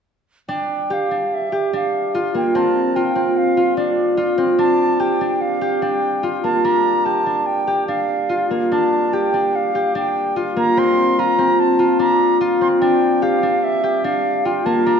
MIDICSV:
0, 0, Header, 1, 3, 480
1, 0, Start_track
1, 0, Key_signature, -2, "major"
1, 0, Tempo, 411241
1, 565, Time_signature, 5, 2, 24, 8
1, 17506, End_track
2, 0, Start_track
2, 0, Title_t, "Flute"
2, 0, Program_c, 0, 73
2, 569, Note_on_c, 0, 79, 68
2, 1085, Note_on_c, 0, 77, 66
2, 1102, Note_off_c, 0, 79, 0
2, 1563, Note_on_c, 0, 76, 64
2, 1580, Note_off_c, 0, 77, 0
2, 2030, Note_off_c, 0, 76, 0
2, 2048, Note_on_c, 0, 77, 65
2, 2478, Note_off_c, 0, 77, 0
2, 2762, Note_on_c, 0, 79, 67
2, 2990, Note_on_c, 0, 81, 75
2, 3007, Note_off_c, 0, 79, 0
2, 3451, Note_on_c, 0, 79, 73
2, 3469, Note_off_c, 0, 81, 0
2, 3932, Note_on_c, 0, 77, 71
2, 3950, Note_off_c, 0, 79, 0
2, 4394, Note_off_c, 0, 77, 0
2, 4401, Note_on_c, 0, 74, 69
2, 5066, Note_off_c, 0, 74, 0
2, 5360, Note_on_c, 0, 81, 77
2, 5839, Note_on_c, 0, 79, 76
2, 5856, Note_off_c, 0, 81, 0
2, 6315, Note_on_c, 0, 77, 76
2, 6333, Note_off_c, 0, 79, 0
2, 6802, Note_on_c, 0, 79, 74
2, 6819, Note_off_c, 0, 77, 0
2, 7279, Note_off_c, 0, 79, 0
2, 7515, Note_on_c, 0, 81, 77
2, 7761, Note_on_c, 0, 82, 82
2, 7778, Note_off_c, 0, 81, 0
2, 8222, Note_on_c, 0, 81, 78
2, 8240, Note_off_c, 0, 82, 0
2, 8712, Note_on_c, 0, 79, 77
2, 8729, Note_off_c, 0, 81, 0
2, 9189, Note_off_c, 0, 79, 0
2, 9196, Note_on_c, 0, 77, 71
2, 9883, Note_off_c, 0, 77, 0
2, 10184, Note_on_c, 0, 81, 74
2, 10661, Note_on_c, 0, 79, 76
2, 10678, Note_off_c, 0, 81, 0
2, 11152, Note_on_c, 0, 77, 72
2, 11169, Note_off_c, 0, 79, 0
2, 11624, Note_off_c, 0, 77, 0
2, 11636, Note_on_c, 0, 79, 84
2, 12073, Note_off_c, 0, 79, 0
2, 12357, Note_on_c, 0, 82, 81
2, 12591, Note_on_c, 0, 84, 92
2, 12608, Note_off_c, 0, 82, 0
2, 13064, Note_on_c, 0, 82, 84
2, 13082, Note_off_c, 0, 84, 0
2, 13537, Note_on_c, 0, 81, 78
2, 13555, Note_off_c, 0, 82, 0
2, 14009, Note_off_c, 0, 81, 0
2, 14014, Note_on_c, 0, 82, 83
2, 14452, Note_off_c, 0, 82, 0
2, 14728, Note_on_c, 0, 84, 74
2, 14798, Note_off_c, 0, 84, 0
2, 14952, Note_on_c, 0, 79, 82
2, 15436, Note_on_c, 0, 77, 79
2, 15454, Note_off_c, 0, 79, 0
2, 15920, Note_on_c, 0, 76, 79
2, 15937, Note_off_c, 0, 77, 0
2, 16392, Note_on_c, 0, 77, 82
2, 16409, Note_off_c, 0, 76, 0
2, 16876, Note_on_c, 0, 79, 72
2, 16894, Note_off_c, 0, 77, 0
2, 17108, Note_on_c, 0, 81, 78
2, 17125, Note_off_c, 0, 79, 0
2, 17344, Note_on_c, 0, 82, 84
2, 17361, Note_off_c, 0, 81, 0
2, 17506, Note_off_c, 0, 82, 0
2, 17506, End_track
3, 0, Start_track
3, 0, Title_t, "Harp"
3, 0, Program_c, 1, 46
3, 566, Note_on_c, 1, 62, 72
3, 1053, Note_on_c, 1, 67, 64
3, 1291, Note_off_c, 1, 62, 0
3, 1296, Note_on_c, 1, 62, 54
3, 1771, Note_off_c, 1, 67, 0
3, 1776, Note_on_c, 1, 67, 61
3, 2019, Note_off_c, 1, 62, 0
3, 2023, Note_on_c, 1, 62, 68
3, 2504, Note_on_c, 1, 65, 65
3, 2737, Note_on_c, 1, 58, 60
3, 2975, Note_on_c, 1, 60, 71
3, 3450, Note_off_c, 1, 65, 0
3, 3454, Note_on_c, 1, 65, 62
3, 3677, Note_off_c, 1, 60, 0
3, 3682, Note_on_c, 1, 60, 54
3, 4162, Note_off_c, 1, 65, 0
3, 4167, Note_on_c, 1, 65, 63
3, 4397, Note_off_c, 1, 62, 0
3, 4402, Note_on_c, 1, 62, 68
3, 4523, Note_off_c, 1, 67, 0
3, 4866, Note_off_c, 1, 65, 0
3, 4871, Note_on_c, 1, 65, 66
3, 5104, Note_off_c, 1, 60, 0
3, 5109, Note_on_c, 1, 60, 66
3, 5347, Note_off_c, 1, 62, 0
3, 5352, Note_on_c, 1, 62, 79
3, 5831, Note_on_c, 1, 67, 63
3, 6075, Note_off_c, 1, 62, 0
3, 6080, Note_on_c, 1, 62, 58
3, 6490, Note_off_c, 1, 58, 0
3, 6547, Note_off_c, 1, 67, 0
3, 6551, Note_on_c, 1, 67, 63
3, 6788, Note_off_c, 1, 62, 0
3, 6793, Note_on_c, 1, 62, 69
3, 7268, Note_off_c, 1, 65, 0
3, 7272, Note_on_c, 1, 65, 68
3, 7515, Note_on_c, 1, 58, 61
3, 7751, Note_off_c, 1, 62, 0
3, 7756, Note_on_c, 1, 62, 76
3, 8232, Note_off_c, 1, 67, 0
3, 8236, Note_on_c, 1, 67, 58
3, 8471, Note_off_c, 1, 62, 0
3, 8476, Note_on_c, 1, 62, 53
3, 8611, Note_off_c, 1, 60, 0
3, 8951, Note_off_c, 1, 67, 0
3, 8956, Note_on_c, 1, 67, 63
3, 9196, Note_off_c, 1, 62, 0
3, 9200, Note_on_c, 1, 62, 64
3, 9674, Note_off_c, 1, 65, 0
3, 9679, Note_on_c, 1, 65, 63
3, 9923, Note_off_c, 1, 58, 0
3, 9928, Note_on_c, 1, 58, 58
3, 10169, Note_off_c, 1, 62, 0
3, 10173, Note_on_c, 1, 62, 70
3, 10652, Note_off_c, 1, 67, 0
3, 10657, Note_on_c, 1, 67, 59
3, 10893, Note_off_c, 1, 62, 0
3, 10898, Note_on_c, 1, 62, 53
3, 11375, Note_off_c, 1, 67, 0
3, 11379, Note_on_c, 1, 67, 63
3, 11609, Note_off_c, 1, 62, 0
3, 11614, Note_on_c, 1, 62, 67
3, 12088, Note_off_c, 1, 65, 0
3, 12093, Note_on_c, 1, 65, 67
3, 12326, Note_off_c, 1, 58, 0
3, 12331, Note_on_c, 1, 58, 65
3, 12571, Note_on_c, 1, 60, 75
3, 13054, Note_off_c, 1, 65, 0
3, 13058, Note_on_c, 1, 65, 64
3, 13283, Note_off_c, 1, 60, 0
3, 13288, Note_on_c, 1, 60, 57
3, 13757, Note_off_c, 1, 65, 0
3, 13762, Note_on_c, 1, 65, 68
3, 13993, Note_off_c, 1, 62, 0
3, 13998, Note_on_c, 1, 62, 70
3, 14127, Note_off_c, 1, 67, 0
3, 14477, Note_off_c, 1, 65, 0
3, 14482, Note_on_c, 1, 65, 70
3, 14715, Note_off_c, 1, 60, 0
3, 14719, Note_on_c, 1, 60, 59
3, 14953, Note_off_c, 1, 62, 0
3, 14958, Note_on_c, 1, 62, 74
3, 15432, Note_on_c, 1, 67, 66
3, 15668, Note_off_c, 1, 62, 0
3, 15672, Note_on_c, 1, 62, 60
3, 16083, Note_off_c, 1, 58, 0
3, 16145, Note_off_c, 1, 67, 0
3, 16149, Note_on_c, 1, 67, 64
3, 16385, Note_off_c, 1, 62, 0
3, 16390, Note_on_c, 1, 62, 69
3, 16864, Note_off_c, 1, 65, 0
3, 16869, Note_on_c, 1, 65, 71
3, 17108, Note_on_c, 1, 58, 64
3, 17345, Note_off_c, 1, 62, 0
3, 17349, Note_on_c, 1, 62, 75
3, 17506, Note_off_c, 1, 58, 0
3, 17506, Note_off_c, 1, 60, 0
3, 17506, Note_off_c, 1, 62, 0
3, 17506, Note_off_c, 1, 65, 0
3, 17506, Note_off_c, 1, 67, 0
3, 17506, End_track
0, 0, End_of_file